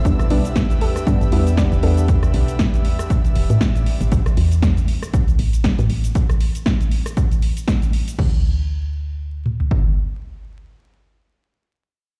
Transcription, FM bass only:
X:1
M:4/4
L:1/16
Q:"Swing 16ths" 1/4=118
K:Am
V:1 name="FM bass" clef=bass
E,, z B,,,3 E,,2 z G,, z E,,2 z E,,, E,,2- | E,, z B,,,3 E,,2 z3 E,,, A,, z3 A,,, | A,,, z E,,3 A,,,2 z C,, z A,,,2 z A,, A,,, z | z16 |
D,,12 z4 | z16 |]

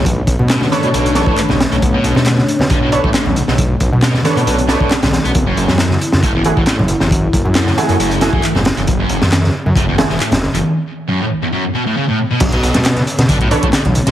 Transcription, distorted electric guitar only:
X:1
M:4/4
L:1/16
Q:"Swing 16ths" 1/4=136
K:Bm
V:1 name="Distorted electric guitar" clef=bass
z4 B,, D, z A,, B,,2 E, A, z D, z A,, | z B,,2 A, z4 D, A,, z A, D, z2 A,, | z4 B,, D, z A,, B,, z A, B,, z D, z B, | z F,,2 E, z4 A,, E,, z E, A,, z2 E,, |
z4 F,, A,, z E,, F,,2 B,, E, z A,, z E,, | z F,,2 E, z4 A,, E,, z E, A,, z2 E,, | z4 F,, A,, z E,, F,, z B,, A,, C, A,, z B,, | z B,,2 A, z4 D, A,, z A, D, z2 A,, |]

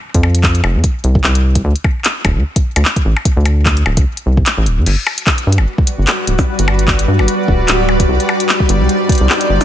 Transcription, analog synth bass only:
X:1
M:4/4
L:1/16
Q:"Swing 16ths" 1/4=149
K:Flyd
V:1 name="Analog synth bass" clef=bass
z F,,4- F,, F,,, F,, z2 C,,2 C,,4 | D,, z4 z D,,, D,, z3 D,, z2 A,,, z | z D,,4- D,, D,,, D,, z2 C,,2 z A,,, D,,, F,, | G,,, z4 z G,, G,,, z3 G,,, z2 D,,, z |
z G,,,4- G,,, G,, G,,, z2 D,,,2 D,,,4 | C,, z4 z G,,, C,, z3 C,, z2 G,,, z |]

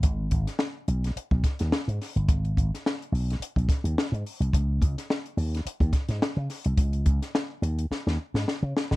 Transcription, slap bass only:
X:1
M:4/4
L:1/16
Q:"Swing 16ths" 1/4=107
K:C#mix
V:1 name="Slap bass" clef=bass
G,,,2 G,,, z3 B,,,2 z B,,, z D,, z G,, z =G,,, | G,,,2 G,,, z3 B,,,2 z B,,, z D,, z G,, z ^B,,, | C,,2 C,, z3 D,,2 z D,, z G,, z C, z ^B,,, | C,,2 C,, z3 D,,2 z D,, z G,, z C, z =G,,, |]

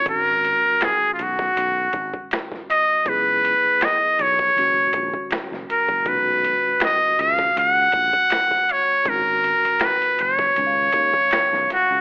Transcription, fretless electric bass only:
X:1
M:4/4
L:1/16
Q:"Swing 16ths" 1/4=80
K:G#dor
V:1 name="Fretless electric bass" clef=bass
G,,,3 z3 B,,,2 B,,,2 G,,, z4 z | C,,3 z3 B,,,2 F,,,2 A,,, z2 F,,, z F,,, | B,,,3 z3 C,,2 C,,2 A,,, z4 z | G,,,3 z3 F,,,2 C,,2 D,, z2 B,,, z C,, |]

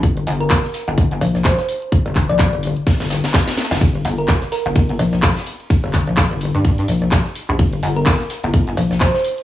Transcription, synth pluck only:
X:1
M:4/4
L:1/16
Q:"Swing 16ths" 1/4=127
K:Fmix
V:1 name="Synth pluck"
z3 B z8 c c z2 | z3 d d z8 z3 | z3 B z2 B6 z4 | z16 |
z3 B z8 c c z2 |]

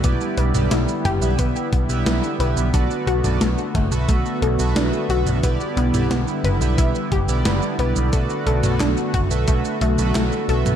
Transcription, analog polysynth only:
X:1
M:4/4
L:1/16
Q:1/4=89
K:Bm
V:1 name="Analog polysynth"
[EGBd]3 [EGBd] z3 [EGBe]3 z [EGBe]3 [EGBe]2 | [FABd]3 [FABd] z3 [FABe]3 z [FABe]3 [FABe]2 | [EGBd]3 [EGBd] z3 [EGBe]3 z [EGBd]3 [EGBd]2 | [FABd]3 [FABd] z3 [FABe]3 z [FABe]3 [FABe]2 |]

